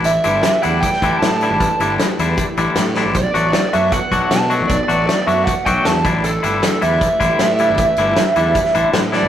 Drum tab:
HH |x-x-x-x-x-x-x-x-|x-x-x-x-x-x-x---|x-x-x-x-x-x-x-x-|x-x-x-x-x-x-x-x-|
SD |----o----o--o---|----o-------o-o-|----o-------o---|----o-------o---|
BD |--------o-o-----|o-------o-------|o-------o-o-----|o-------o-o---o-|

HH |x-x-x-x-x-x-x-x-|x-x-x-x-x-x-x---|
SD |----o-------o---|----o----o--o-o-|
BD |--------o-o-----|o-------o-------|